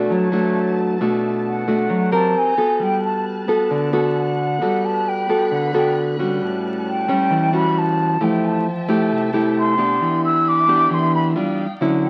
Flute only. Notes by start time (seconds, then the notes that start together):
Already playing: D5
0.13 C#5
1.48 F#5
2.14 A5
2.38 G#5
2.83 G5
3.04 A5
4.18 F#5
4.85 A5
5.08 G5
5.54 F#5
5.76 G5
6.89 G5
7.54 B5
7.79 A5
8.24 G5
8.45 A5
9.59 C6
10.25 E6
10.48 D6
10.94 C6
11.15 B5
12.05 G5